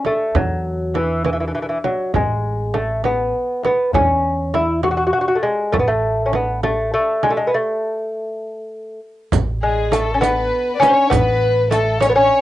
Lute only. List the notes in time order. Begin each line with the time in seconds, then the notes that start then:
0.06 A3
0.36 F#3
0.96 E3
1.25 E3
1.33 E3
1.40 E3
1.48 E3
1.55 E3
1.62 E3
1.69 E3
1.84 F#3
2.16 G#3
2.74 A3
3.05 B3
3.65 B3
3.94 C#4
4.54 E4
4.84 F#4
4.91 F#4
4.97 F#4
5.07 F#4
5.13 F#4
5.21 F#4
5.28 F#4
5.35 A3
5.43 G#3
5.72 A3
5.79 B3
5.88 A3
6.26 C#4
6.35 B3
6.64 A3
6.94 A3
7.23 G#3
7.30 A3
7.37 G#3
7.47 B3
7.54 A3
9.63 G#3
9.92 A3
10.14 C#4
10.21 B3
10.80 C#4
11.10 B3
11.71 A3
12.01 C#4
12.10 B3
12.16 C#4